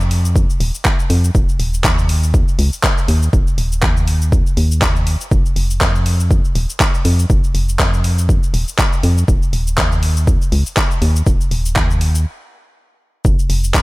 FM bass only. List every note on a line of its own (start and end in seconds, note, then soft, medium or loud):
0.00 0.45 F2 loud
0.60 0.72 D#1 loud
1.10 1.31 F2 loud
1.35 1.46 D#1 loud
1.60 1.86 D#1 medium
1.84 2.44 D#2 loud
2.59 2.70 C#2 loud
3.08 3.29 D#2 loud
3.33 3.45 D#1 loud
3.58 3.84 D#1 medium
3.83 4.42 D#2 loud
4.57 5.17 D#2 medium
5.31 5.43 F1 loud
5.56 5.83 F1 medium
5.81 6.40 F2 loud
6.56 6.67 D#1 loud
7.05 7.26 F2 loud
7.30 7.41 F1 medium
7.55 7.81 F1 medium
7.79 8.39 F2 loud
8.54 8.65 D#1 loud
9.03 9.24 F2 loud
9.28 9.40 D#1 loud
9.53 9.79 D#1 medium
9.78 10.37 D#2 loud
10.52 10.64 C#2 loud
11.02 11.22 D#2 loud
11.27 11.38 D#1 medium
11.51 11.78 D#1 medium
11.76 12.26 D#2 loud
13.25 13.36 F1 loud
13.50 13.76 F1 medium
13.74 13.82 F2 loud